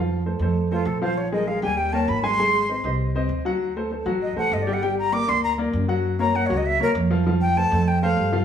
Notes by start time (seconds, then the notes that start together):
Already playing: F2 F3 F4 F5
0.26 A3 A4 C5
0.39 F2 A3 A4 C5
0.71 A3 F4 A4 C5
0.85 A#1 A4
1.02 F3 F4 C5 F5
1.17 C#5
1.32 G#3 G#4 A#4 D#5
1.47 G#3 G#4 A#4 F5
1.62 D#2 G3 G4 G5 G#5
1.77 G5
1.93 A#3 A#4 C#5 A5
2.08 G#1 B5
2.23 G#3 G#4 G#5 C6
2.39 G#3 G#4 G#5
2.69 C4 C5 D#5
2.84 C2 C4 C5 D#5
3.15 C4 C5 D#5
3.29 D2
3.45 F#3 F#4 F#5
3.76 A3 A4 C5
3.91 A3 A4 C5
4.06 A1 F#3 F#4 F#5
4.22 D#5
4.36 A1 A3 A4 C5 F#5
4.52 G1 D#5
4.62 D5
4.67 G3 G4 G5
4.73 F#5
4.82 G3 G4 G5
4.99 A#5
5.12 A#3 A#4 D5 D6
5.27 D2 A#3 A#4 D5 C6
5.44 A#5
5.58 A#3 A#4 D5
5.73 F#2
5.88 F#3 F#4 F#5
6.19 A#3 A#4 C#5 A#5
6.34 A#3 A#4 C#5 F#5
6.46 C#2 F#3 F#4 C#5 F#5
6.57 D#5
6.66 E5
6.80 D#2 A#3 A#4 C#5
6.95 F2
7.11 F3 F4 F5
7.26 F3 F4 F5
7.41 G5
7.56 A3 A4 C5 A5
7.71 F2 A3 A4 C5
7.88 G5
8.02 A3 A4 C5 F5
8.17 G2
8.32 F3 F4 F5